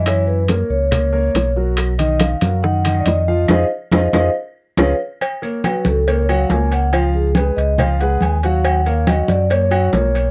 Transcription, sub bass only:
\new Staff \with { instrumentName = "Sub bass" } { \clef bass \time 4/4 \key ces \lydian \tempo 4 = 140 fis,4. des,4. ces,4~ | ces,4. fis,4. f,4 | f,8 r8 f,8 f,8 r4 des,8 r8 | \key fis \major r4. cis,4. cis,4~ |
cis,4. cis,4. dis,4~ | dis,4. fis,4. b,,4 | }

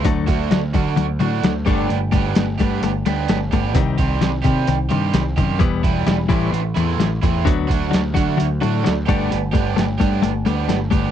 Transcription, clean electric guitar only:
\new Staff \with { instrumentName = "Clean electric guitar" } { \clef bass \time 4/4 \key g \major \tempo 4 = 130 <d fis a>8 <d fis>8 <d fis>8 <d fis>8 <d fis>8 <d fis>8 <d fis>8 <g a d'>8 | <g a>8 <g a>8 <g a>8 <g a>8 <g a>8 <g a>8 <g a>8 <g a>8 | <c ees g>8 <c ees>8 <c ees>8 <c ees>8 <c ees>8 <c ees>8 <c ees>8 <c ees>8 | <e g b>8 <e g>8 <e g>8 <a, e g>8 a,8 <a, e>8 <a, e>8 <a, e>8 |
<d fis b>8 <d fis>8 <d fis>8 <d fis>8 <d fis>8 <d fis>8 <d fis>8 <g a d'>8 | <g a>8 <g a>8 <g a>8 <g a>8 <g a>8 <g a>8 <g a>8 <g a>8 | }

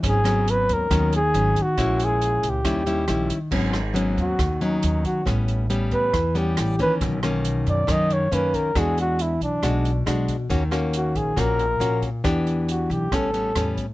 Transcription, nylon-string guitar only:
\new Staff \with { instrumentName = "Nylon-string guitar" } { \time 4/4 \key gis \minor \tempo 4 = 138 << { <fis b cis'>8 <fis b cis'>4. <fis b cis'>8 r8 <fis b cis'>8 r8 | <gis cis' e'>2 <g cis' e'>8 <g cis' e'>8 <g cis' e'>8 r8 | <fis b cis'>8 r8 <fis b cis'>4 r8 <fis b cis'>4. | <g b cis'>4 <g b cis'>4 r8 <g b cis'>4 <dis ais cis'>8~ |
<dis ais cis'>8 <dis ais cis'>4. <dis ais cis'>4 <dis ais cis'>4 | <gis d' fis'>4. r8 <gis d' fis'>8 r8 <gis d' fis'>8 r8 | <ais cis' fis'>8 <ais cis' fis'>4. <ais cis' fis'>8 r8 <ais cis' fis'>8 r8 | <b d' g'>2 <g b cis'>8 <g b cis'>8 <g b cis'>8 r8 | } \\ { gis,2 dis2 | ais,2 dis2 | gis,2 dis2 | a,2 e2 |
b,2 fis,2 | e2 b,2 | dis2 ais,2 | e2 a,2 | } >> }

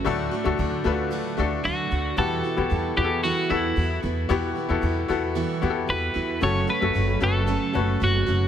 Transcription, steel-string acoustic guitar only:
\new Staff \with { instrumentName = "Steel-string acoustic guitar" } { \time 4/4 \key e \dorian \tempo 4 = 113 <d fis a d' fis'>8 <a d' fis'>8 <fis a d' fis'>8 <a d' fis'>8 <d fis a d' fis'>8 <a d' fis'>8 <fis a d' fis'>8 <a d' fis'>8 | <e g b e' fis'>8 <b e' fis'>8 <g b e' fis'>8 <b e' fis'>8 <e g b e' fis'>8 <b e' fis'>8 <g b e' fis'>8 <b e' fis'>8 | <e g b e' fis'>8 <b e' fis'>8 <g b e' fis'>8 <b e' fis'>8 <e g b e' fis'>8 <b e' fis'>8 <g b e' fis'>8 <b e' fis'>8 | <fis, cis fis a cis' fis'>8 <fis a cis' fis'>8 <fis a cis' fis'>8 <fis a cis' fis'>8 <fis, cis fis a cis' fis'>8 <fis a cis' fis'>8 <fis a cis' fis'>8 <fis a cis' fis'>8 | }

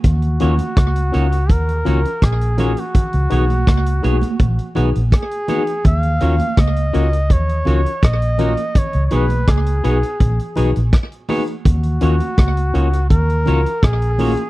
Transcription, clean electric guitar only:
\new Staff \with { instrumentName = "Clean electric guitar" } { \time 4/4 \key ees \minor \tempo 4 = 83 r8 <bes ees' ges' des''>8 r8 <bes ees' ges' des''>8 r8 <bes ees' ges' des''>8 r8 <bes ees' ges' des''>8 | r8 <ces' ges' aes' des''>8 r8 <ces' ges' aes' des''>8 r8 <ces' ges' aes' des''>8 r8 <ces' ges' aes' des''>8 | r8 <bes ees' ges' des''>8 r8 <bes ees' ges' des''>8 r8 <bes ees' ges' des''>8 r8 <bes ees' ges' des''>8 | r8 <ces' ges' aes' des''>8 r8 <ces' ges' aes' des''>8 r8 <ces' ges' aes' des''>8 r8 <ces' ges' aes' des''>8 |
r8 <bes ees' ges' des''>8 r8 <bes ees' ges' des''>8 r8 <bes ees' ges' des''>8 r8 <bes ees' ges' des''>8 | }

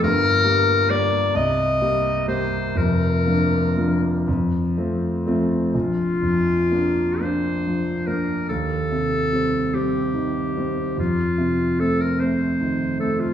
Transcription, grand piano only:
\new Staff \with { instrumentName = "Grand piano" } { \time 6/8 \key bes \major \tempo 4. = 47 <g,, g,>8 <g bes g'>8 <g bes g'>8 c,8 <g bes g'>8 <g bes g'>8 | <f,, f,>8 <f bes d'>8 <f bes d'>8 f,8 <f a c'>8 <f a c'>8 | bes,,8 f,8 <bes d'>8 <bes d'>8 f8 <bes d'>8 | ees,8 c8 <g c'>8 <g c'>8 ees8 <g c'>8 |
f,8 c8 <a c'>8 <a c'>8 ees8 <a c'>8 | }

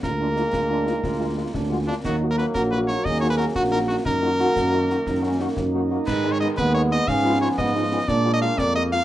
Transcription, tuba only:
\new Staff \with { instrumentName = "Tuba" } { \clef bass \time 6/8 \key ees \minor \tempo 4. = 119 d,4. d,4. | d,4. d,4. | ees,4. bes,,4. | ees,4. bes,,4. |
ges,4. ges,4. | ges,4. ges,4. | aes,4. ees,4. | aes,4. aes,4. |
bes,4. f,4. | }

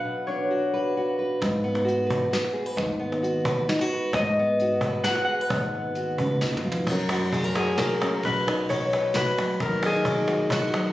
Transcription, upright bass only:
\new Staff \with { instrumentName = "Upright bass" } { \clef bass \time 3/4 \key gis \dorian \tempo 4 = 132 r2. | gis,2 r4 | dis,2 r4 | gis,2 r4 |
dis,4. cis,8 dis,8 eis,8 | fis,2 r4 | b,,2 r4 | dis,2 r4 | }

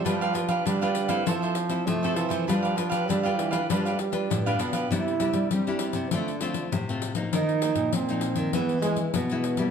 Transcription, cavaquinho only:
\new Staff \with { instrumentName = "Cavaquinho" } { \time 4/4 \key c \major \tempo 4 = 99 <d' g' b' f''>16 <g' b' f''>16 r16 <g' b' f''>16 <d' g' b' f''>16 <g' b' f''>8 <g' b' f''>16 <f' a' c'' e''>16 <a' c'' e''>16 r8. <a' c'' e''>16 <f' a' c'' e''>16 <a' c'' e''>16 | <d' g' b' f''>16 <g' b' f''>16 r16 <g' b' f''>16 <d' g' b' f''>16 <g' b' f''>8 <g' b' f''>16 <d' g' b' f''>16 <g' b' f''>16 r8. <g' b' f''>16 <d' g' b' f''>16 <g' b' f''>16 | r1 | r1 | }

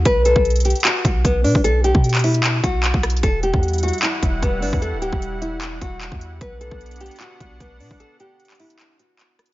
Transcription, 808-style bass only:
\new Staff \with { instrumentName = "808-style bass" } { \clef bass \time 4/4 \key b \phrygian \tempo 4 = 151 b,,8. b,,4 r8. b,,8 b,,8 b,16 b,,16~ | b,,8. b,4.~ b,16 b,,8. b,,8. | e,,8. e,4 r8. e,,8 e,,8 g,,16 e,16~ | e,16 d,,8 e,,4.~ e,,16 e,,8. e,8. |
b,,8. b,,4 r8. b,,8 b,,8 b,16 b,,16 | r1 | }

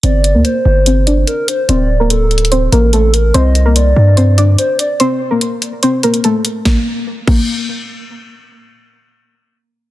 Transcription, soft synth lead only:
\new Staff \with { instrumentName = "Soft synth lead" } { \time 4/4 \key g \minor \tempo 4 = 145 d''4 c''2 bes'8 c''8 | d''4 a'4. bes'8 a'8 bes'8 | ees''4 d''2 c''8 d''8 | r1 |
r1 | r1 | }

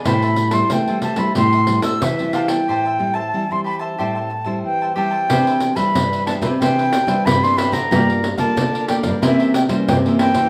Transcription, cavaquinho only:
\new Staff \with { instrumentName = "Cavaquinho" } { \time 4/4 \key a \minor \tempo 4 = 92 <g' c'' e'' a''>16 <c'' e'' a''>16 r16 <c'' e'' a''>8 <c'' e'' a''>16 <g' c'' e'' a''>16 <c'' e'' a''>16 <g' c'' e'' a''>16 <c'' e'' a''>16 r16 <c'' e'' a''>8 <c'' e'' a''>16 <g' c'' e'' a''>16 <c'' e'' a''>16 | <g' c'' e'' a''>16 <c'' e'' a''>16 r16 <c'' e'' a''>8 <c'' e'' a''>16 <g' c'' e'' a''>16 <c'' e'' a''>16 <g' c'' e'' a''>16 <c'' e'' a''>16 r16 <c'' e'' a''>8 <c'' e'' a''>16 <g' c'' e'' a''>16 <c'' e'' a''>16 | \key c \major <g' b' c'' e''>16 <b' c'' e''>16 r16 <b' c'' e''>8 <b' c'' e''>16 <g' b' c'' e''>16 <b' c'' e''>16 <g' b' c'' e''>16 <b' c'' e''>16 r16 <b' c'' e''>8 <b' c'' e''>16 <g' b' c'' e''>16 <b' c'' e''>16 | <g' bes' d'' f''>16 <bes' d'' f''>16 r16 <bes' d'' f''>8 <bes' d'' f''>16 <g' bes' d'' f''>16 <bes' d'' f''>16 <e' bes' c'' e''>16 <bes' c'' e''>16 r16 <bes' c'' e''>8 <bes' c'' e''>16 <e' bes' c'' e''>16 <bes' c'' e''>16 | }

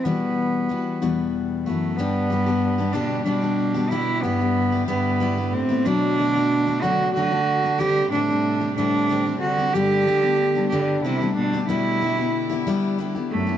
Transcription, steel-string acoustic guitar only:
\new Staff \with { instrumentName = "Steel-string acoustic guitar" } { \time 6/8 \key g \major \tempo 4. = 62 <e, b, e g b fis'>4 <e g b fis'>8 <e, b, e g b fis'>4 <e b fis'>8 | <g, d g b d' g'>8 <g b d' g'>16 <g b d' g'>8 <g b d' g'>16 <g, d g b d' g'>8 <g b d' g'>16 <g b d' g'>8 <g b d' g'>16 | <g b e' g'>8 <g b e' g'>16 <b e' g'>8 <b e' g'>16 <g b e' g'>8 <g b e' g'>16 <b e' g'>8 <b e' g'>16 | <b, fis a d' fis'>8 <fis a d' fis'>16 <a d' fis'>8 <a d' fis'>16 <b, fis a d' fis'>8 <fis a d' fis'>16 <a d' fis'>8 <a d' fis'>16 |
<a, d g c' g'>8 <d g c' g'>16 <g c' g'>8 <g c' g'>16 <a, d g c' g'>8 <d g c' g'>16 <g c' g'>8 <g c' g'>16 | <g, d g b d' g'>8 <g b d' g'>16 <g b d' g'>8 <g b d' g'>16 <g, d g b d' g'>8 <g b d' g'>16 <g b d' g'>8 <g b d' g'>16 | <g b e' g'>8 <g b e' g'>16 <b e' g'>8 <b e' g'>16 <g b e' g'>8 <g b e' g'>16 <b e' g'>8 <b e' g'>16 | }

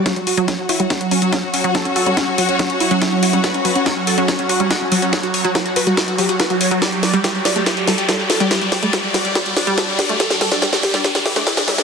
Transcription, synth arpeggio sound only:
\new Staff \with { instrumentName = "Synth arpeggio sound" } { \clef bass \time 4/4 \key g \lydian \tempo 4 = 142 fis16 r8 fis16 fis16 r16 fis'16 g16 r8 fis16 r16 fis16 r8 fis16 | fis16 r16 fis'16 g16 r8 fis16 r16 fis16 r8 fis16 fis16 r16 fis'16 g16 | r8 fis16 r16 fis16 r8 fis16 fis16 r16 fis'16 g16 r8 fis16 r16 | fis16 r8 fis16 fis16 r16 fis'16 g16 r8 fis16 r16 fis'16 fis16 r16 fis16 |
g16 r8 g16 g16 r16 g'16 a16 r8 g16 r16 g16 r8 g16 | g16 r16 g'16 a16 r8 g16 r16 g16 r8 g16 g16 r16 g'16 a16 | r8 g16 r16 g16 r8 g16 g16 r16 g'16 a16 r8 g16 r16 | }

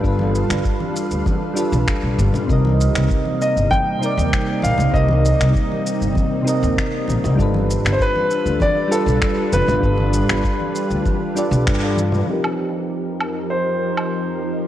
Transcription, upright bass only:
\new Staff \with { instrumentName = "Upright bass" } { \clef bass \time 4/4 \key c \dorian \tempo 4 = 98 g,,8 r16 g,,16 r8. d,16 r8. b,,16 r16 b,,16 g,,16 r16 | c,8 r16 c,16 r8. g,,16 r8. ees,16 r8 bes,,16 c,16 | c,8 r16 c,16 r8. g,,16 r8. ees,16 r8 bes,,16 c,16 | g,,8 r16 g,,16 r8. d,16 r8. b,,16 r8 f,,16 g,,16 |
g,,8 r16 g,,16 r8. d,16 r8. b,,16 g,8. r16 | r1 | }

